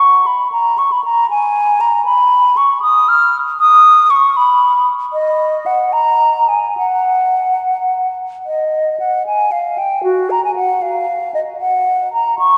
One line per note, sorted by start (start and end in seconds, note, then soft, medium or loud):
0.00 0.28 C#6 medium
0.26 0.51 B5 medium
0.52 0.80 A#5 medium
0.78 0.93 C#6 medium
0.92 1.04 B5 medium
1.04 1.30 A#5 medium
1.30 1.82 G#5 medium
1.81 2.05 A#5 medium
2.05 2.58 B5 medium
2.57 2.82 C#6 medium
2.82 3.10 D#6 medium
3.09 3.37 F6 medium
3.60 4.12 D#6 medium
4.10 4.38 C#6 medium
4.37 4.88 B5 medium
5.13 5.68 D#5 medium
5.66 5.94 F#5 medium
5.93 6.50 A#5 medium
6.49 6.77 G#5 medium
6.77 8.16 F#5 medium
8.46 8.96 D#5 medium
9.00 9.26 F#5 medium
9.27 9.53 G#5 medium
9.52 9.80 F5 medium
9.78 10.03 G5 medium
10.04 10.32 F#4 medium
10.30 10.43 A#5 medium
10.45 10.55 G#5 medium
10.56 10.83 F#5 medium
10.82 11.34 F5 medium
11.34 11.40 D#5 medium
11.60 12.12 F#5 medium
12.13 12.38 A#5 medium
12.39 12.58 C#6 medium